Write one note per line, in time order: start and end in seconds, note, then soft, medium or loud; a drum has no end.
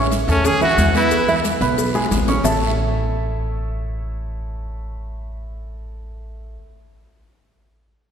0.00 0.23 A1 medium
0.00 0.22 C#4 medium
0.00 0.23 C#5 medium
0.00 0.23 C#6 medium
0.12 cowbell medium
0.12 high conga medium
0.12 short guiro medium
0.12 maracas medium
0.28 0.75 E2 loud
0.28 0.42 A3 medium
0.28 0.47 C#4 loud
0.28 0.42 A4 medium
0.28 0.42 A5 medium
0.28 cowbell medium
0.28 high conga soft
0.28 short guiro medium
0.28 maracas soft
0.45 0.59 C#4 medium
0.45 0.62 G#4 loud
0.45 0.59 C#5 medium
0.45 0.59 C#6 medium
0.45 cowbell loud
0.45 high conga soft
0.45 low conga medium
0.45 long guiro medium
0.45 maracas medium
0.61 0.89 E3 medium
0.61 0.89 E4 medium
0.61 0.93 F#4 loud
0.61 0.89 E5 medium
0.61 high conga soft
0.61 low conga medium
0.61 maracas soft
0.78 1.55 E2 medium
0.78 cowbell medium
0.78 high conga medium
0.78 short guiro medium
0.78 maracas medium
0.94 1.22 B3 medium
0.94 1.42 E4 medium
0.94 1.22 B4 medium
0.94 1.22 B5 medium
0.94 cowbell medium
0.94 high conga medium
0.94 short guiro medium
0.94 maracas soft
1.11 cowbell loud
1.11 high conga soft
1.11 long guiro medium
1.11 maracas medium
1.28 1.56 E3 medium
1.28 1.56 E4 medium
1.28 1.56 E5 medium
1.28 high conga soft
1.28 maracas soft
1.44 cowbell medium
1.44 high conga loud
1.44 short guiro medium
1.44 maracas medium
1.61 2.07 B1 loud
1.61 1.89 B3 medium
1.61 1.89 B4 medium
1.61 1.89 B5 medium
1.61 cowbell medium
1.61 high conga soft
1.61 short guiro medium
1.61 maracas soft
1.78 cowbell loud
1.78 high conga soft
1.78 long guiro medium
1.78 maracas medium
1.94 2.22 G#3 medium
1.94 2.22 G#4 medium
1.94 2.22 G#5 medium
1.94 high bongo medium
1.94 high conga soft
1.94 maracas soft
2.06 high bongo medium
2.11 2.41 A1 medium
2.11 cowbell medium
2.11 high conga medium
2.11 short guiro medium
2.11 maracas medium
2.17 low bongo medium
2.28 2.42 C#4 medium
2.28 2.42 C#5 medium
2.28 2.42 C#6 medium
2.28 cowbell medium
2.28 low bongo medium
2.28 high conga soft
2.28 short guiro medium
2.28 maracas soft
2.44 6.56 A1 loud
2.44 6.56 A3 medium
2.44 6.56 E4 medium
2.44 6.56 A4 medium
2.44 6.56 C#5 medium
2.44 6.56 E5 medium
2.44 6.56 A5 loud
2.44 low bongo loud
2.44 low conga loud
2.44 long guiro loud
2.44 maracas loud